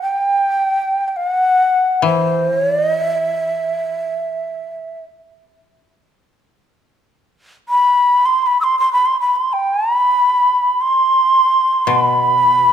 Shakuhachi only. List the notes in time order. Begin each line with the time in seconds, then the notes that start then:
0.01 G5
1.08 G5
1.16 F#5
2.06 C5
2.50 C#5
2.67 D5
2.84 D#5
3.01 E5
7.69 B5
8.26 C6
8.47 B5
8.61 C6 E6
8.79 C6
8.93 B5
9.06 C6
9.21 B5
9.36 C6
9.53 G5
9.95 B5
10.81 C6
11.85 C6
11.98 B5